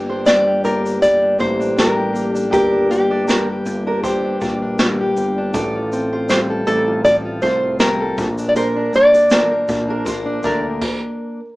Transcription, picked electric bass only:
Already playing: G1
0.64 G1
1.40 A1
2.53 G1
3.66 G1
4.42 A#1
5.17 G1
5.54 A1
6.67 A1
7.43 C2
8.18 A#1
9.69 A#1
10.44 D2

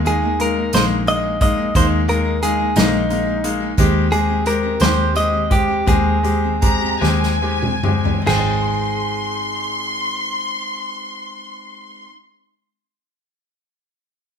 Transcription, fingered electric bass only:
Already playing: D#2
0.74 A#1
1.75 D#2
2.76 A#1
3.78 D#2
4.81 D#2
5.87 D#2
7.02 D#2
8.27 G#1

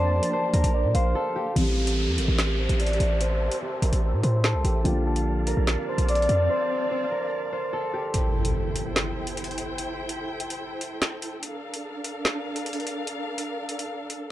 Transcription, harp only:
Already playing: G4 A#4 C5 D5
0.33 C5
0.54 A#4
0.95 C5
1.15 A4
1.36 G4
1.77 A4
2.18 A#4
2.59 C5
2.80 D5
3.21 C5
3.62 C5
3.83 A#4
4.24 C5
4.44 A4
4.65 G4
4.85 G4
5.06 A4
5.47 A#4
5.88 C5
6.09 D5
6.50 C5
6.91 C5
7.11 A#4
7.52 C5
7.73 A4
7.94 G4

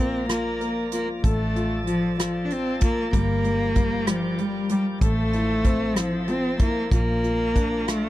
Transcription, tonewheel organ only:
Already playing: F3 A#4 D5 A#5
1.25 A4 A5
3.11 A#4 D5 G5
5.02 C5 E5 A5
6.92 F4 D5 A#5

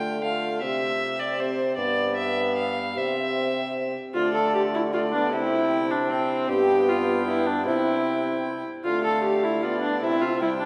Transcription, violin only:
Already playing: G5
0.24 F5
0.62 E5
1.19 D5
1.40 C5
1.77 D5
2.17 E5
2.56 F5
2.97 E5
4.17 D5
4.94 D5
5.33 G5
6.11 G5
6.49 G5
7.68 G5
8.86 F5
9.64 D5
10.03 E5
10.42 G5

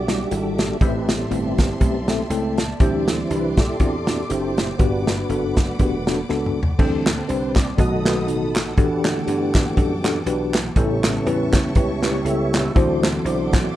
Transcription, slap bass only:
Already playing: B1
0.31 G#1
0.81 A1
1.31 G1
1.80 B1
2.30 C#2
2.80 D2
3.30 C2
3.80 E2
4.30 F#1
4.79 G1
5.29 F#1
5.79 E1
6.30 C#2
6.79 D2
7.30 C2
7.78 B1
8.28 A1
8.78 E2
9.28 G2
9.77 F#2
10.26 B1
10.76 A1
11.26 E2
11.75 C#2
12.25 C#2
12.76 D2
13.25 B1

